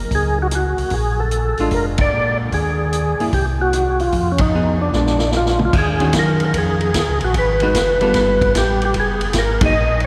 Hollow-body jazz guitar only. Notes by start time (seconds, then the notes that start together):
1.60 G#3 D4 F4
3.20 A#3 E4 G#4
4.55 F3 B3 D#4 G#4
4.95 G#3 B3 D4
6.00 D#3 C#4 F#4 G#4
7.62 G#3 D#4 F#4 B4
8.01 G3 B3 F4 A4
9.61 F#3 A#3 D#4 G#4